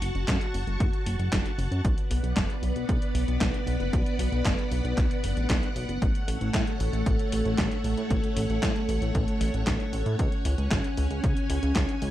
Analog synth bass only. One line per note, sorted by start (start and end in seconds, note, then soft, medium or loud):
0.02 0.11 F#1 medium
0.15 0.24 F#1 medium
0.28 0.38 F#2 loud
0.54 0.64 F#1 medium
0.67 0.77 F#1 medium
0.80 0.90 F#1 loud
1.06 1.16 F#1 medium
1.19 1.29 F#1 medium
1.32 1.42 F#1 loud
1.58 1.68 F#1 medium
1.71 1.81 F#2 medium
1.85 1.94 B1 loud
2.10 2.20 B1 medium
2.23 2.33 B1 medium
2.37 2.46 F#1 loud
2.62 2.72 B1 medium
2.76 2.85 B1 medium
2.89 2.98 B1 loud
3.15 3.24 B1 medium
3.28 3.37 B1 medium
3.41 3.51 B1 loud
3.67 3.76 B1 medium
3.80 3.90 F#1 medium
3.93 4.03 B1 loud
4.19 4.29 B1 medium
4.32 4.42 B1 medium
4.45 4.55 F#1 loud
4.71 4.81 B1 medium
4.84 4.94 B1 medium
4.97 5.07 B1 loud
5.24 5.33 F#1 medium
5.37 5.46 A1 medium
5.50 5.59 B1 loud
5.76 5.85 B1 medium
5.89 5.98 F#1 medium
6.02 6.11 A1 loud
6.28 6.37 A1 medium
6.41 6.50 A1 medium
6.54 6.64 A2 loud
6.80 6.90 A1 loud
6.93 7.03 A1 medium
7.06 7.16 A1 loud
7.32 7.42 A1 medium
7.45 7.55 A1 medium
7.58 7.68 A1 loud
7.84 7.94 A1 medium
7.97 8.07 A2 medium
8.11 8.20 A1 loud
8.36 8.46 A1 medium
8.49 8.59 A1 medium
8.63 8.72 A2 loud
8.89 8.98 A1 medium
9.02 9.11 A1 medium
9.15 9.24 A1 loud
9.41 9.50 A1 loud
9.54 9.64 A1 medium
9.67 9.77 A1 loud
9.93 10.03 A1 medium
10.06 10.16 A2 medium
10.19 10.29 C#2 loud
10.45 10.55 C#2 medium
10.58 10.68 C#2 medium
10.71 10.81 G#1 loud
10.98 11.07 C#2 medium
11.11 11.20 C#2 medium
11.24 11.33 C#2 loud
11.50 11.59 C#2 medium
11.63 11.72 C#2 medium
11.76 11.85 C#2 loud
12.02 12.11 C#2 medium